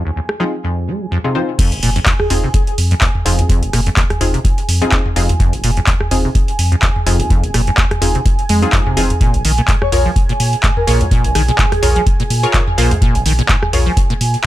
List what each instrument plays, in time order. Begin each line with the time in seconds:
Already playing: synth stab C4 D#4 F4 G#4, analog synth pad G#5
0.05 acid bass D#2
0.16 acid bass D#2
0.29 cross-stick
0.40 acid bass F3, synth stab C4 D#4 F4 G#4
0.64 acid bass F2
0.88 acid bass G#3
1.01 acid bass F3
1.11 acid bass F2
1.24 acid bass C3, synth stab C4 D#4 F4 G#4
1.35 acid bass F3, synth stab C4 D#4 F4 C5
1.59 acid bass F2, analog synth pad G#5, kick, closed hi-hat, crash
1.72 sub bass F1, acid bass F1, closed hi-hat
1.83 sub bass F1, acid bass A#2, open hi-hat
1.96 acid bass F2, closed hi-hat
2.06 acid bass D#2, kick, clap, closed hi-hat
2.20 soft synth lead G#4, cross-stick, mid tom
2.30 sub bass F1, synth stab C4 D#4 F4 G#4, soft synth lead G#4, mid tom, open hi-hat
2.44 acid bass C3
2.54 soft synth lead G#4, kick, closed hi-hat
2.67 soft synth lead G#4, closed hi-hat
2.78 sub bass F2, open hi-hat
2.91 acid bass F2, closed hi-hat
3.01 acid bass D#2, kick, clap, closed hi-hat
3.15 mid tom
3.25 sub bass F1, acid bass F2, synth stab C4 D#4 F4 G#4, open hi-hat
3.39 acid bass D#2, closed hi-hat, mid tom
3.49 acid bass F2, kick, closed hi-hat
3.62 sub bass F1, acid bass F1, closed hi-hat
3.73 sub bass F1, acid bass A#2, cross-stick, open hi-hat
3.86 acid bass F2, closed hi-hat
3.97 acid bass D#2, kick, clap, closed hi-hat
4.10 cross-stick, closed hi-hat, mid tom
4.21 sub bass F1, synth stab C4 D#4 F4 G#4, mid tom, open hi-hat
4.34 acid bass C3, closed hi-hat
4.45 kick, closed hi-hat
4.58 closed hi-hat
4.68 sub bass F2, open hi-hat
4.82 acid bass F2, synth stab C4 D#4 F4 G#4, closed hi-hat
4.92 acid bass D#2, kick, clap, closed hi-hat
5.06 mid tom
5.16 sub bass F1, acid bass F2, synth stab C4 D#4 F4 G#4, open hi-hat
5.29 acid bass D#2, closed hi-hat, mid tom
5.40 acid bass F2, kick, closed hi-hat
5.53 sub bass F1, acid bass F1, closed hi-hat
5.63 sub bass F1, acid bass A#2, open hi-hat
5.77 acid bass F2, closed hi-hat
5.87 acid bass D#2, kick, clap, closed hi-hat
6.00 cross-stick, mid tom
6.11 sub bass F1, synth stab C4 D#4 F4 G#4, mid tom, open hi-hat
6.24 acid bass C3
6.35 kick, closed hi-hat
6.48 closed hi-hat
6.59 sub bass F2, open hi-hat
6.72 acid bass F2, closed hi-hat
6.82 acid bass D#2, kick, clap, closed hi-hat
6.96 mid tom
7.06 sub bass F1, acid bass F2, synth stab C4 D#4 F4 G#4, open hi-hat
7.20 acid bass D#2, closed hi-hat, mid tom
7.30 acid bass F2, kick, closed hi-hat
7.43 sub bass F1, acid bass F1, closed hi-hat
7.54 sub bass F1, acid bass A#2, cross-stick, open hi-hat
7.67 acid bass F2, closed hi-hat
7.77 acid bass D#2, kick, clap, closed hi-hat
7.91 cross-stick, closed hi-hat, mid tom
8.02 sub bass F1, synth stab C4 D#4 F4 G#4, mid tom, open hi-hat
8.15 acid bass C3, closed hi-hat
8.26 kick, closed hi-hat
8.39 closed hi-hat
8.49 sub bass F2, acid bass G#3, open hi-hat
8.62 acid bass F3, synth stab C4 D#4 F4 G#4, closed hi-hat
8.73 acid bass F2, kick, clap, closed hi-hat
8.86 acid bass C3, mid tom
8.97 sub bass F1, acid bass F3, synth stab C4 D#4 F4 G#4, open hi-hat
9.10 closed hi-hat, mid tom
9.21 acid bass A#2, kick, closed hi-hat
9.34 sub bass A#1, acid bass A#1, closed hi-hat
9.45 sub bass A#1, acid bass D#3, open hi-hat
9.58 acid bass A#2, closed hi-hat
9.68 acid bass G#2, kick, clap, closed hi-hat
9.82 soft synth lead C#5, cross-stick, mid tom
9.92 sub bass A#1, synth stab F4 G#4 A#4 C#5, soft synth lead C#5, mid tom, open hi-hat
10.05 acid bass F3
10.16 kick, closed hi-hat
10.29 acid bass A#2, closed hi-hat
10.40 sub bass A#2, open hi-hat
10.53 closed hi-hat
10.63 acid bass G#2, kick, clap, closed hi-hat
10.77 soft synth lead A#4, mid tom
10.87 sub bass A#1, acid bass A#2, synth stab F4 G#4 A#4 C#5, soft synth lead A#4, open hi-hat
11.01 acid bass G#2, closed hi-hat, mid tom
11.11 acid bass A#2, kick, closed hi-hat
11.24 sub bass A#1, acid bass A#1, closed hi-hat
11.35 sub bass A#1, acid bass D#3, soft synth lead G#4, cross-stick, open hi-hat
11.48 acid bass A#2, closed hi-hat
11.58 acid bass G#2, kick, clap, closed hi-hat
11.72 cross-stick, closed hi-hat, mid tom
11.83 sub bass A#1, synth stab F4 G#4 A#4 C#5, mid tom, open hi-hat
11.96 acid bass F3, closed hi-hat
12.06 kick, closed hi-hat
12.20 acid bass A#2, closed hi-hat
12.30 sub bass A#2, open hi-hat
12.43 synth stab F4 G#4 A#4 C#5, closed hi-hat
12.54 acid bass G#2, kick, clap, closed hi-hat
12.67 mid tom
12.78 sub bass A#1, acid bass A#2, synth stab F4 G#4 A#4 C5, open hi-hat
12.91 acid bass G#2, closed hi-hat, mid tom
13.02 acid bass A#2, kick, closed hi-hat
13.15 sub bass A#1, acid bass A#1, closed hi-hat
13.25 sub bass A#1, acid bass D#3, open hi-hat
13.39 acid bass A#2, closed hi-hat
13.49 acid bass G#2, kick, clap, closed hi-hat
13.63 cross-stick, mid tom
13.73 sub bass A#1, synth stab F4 G#4 A#4 C#5, mid tom, open hi-hat
13.86 acid bass F3
13.97 kick, closed hi-hat
14.10 acid bass A#2, closed hi-hat
14.21 sub bass A#2, open hi-hat
14.34 closed hi-hat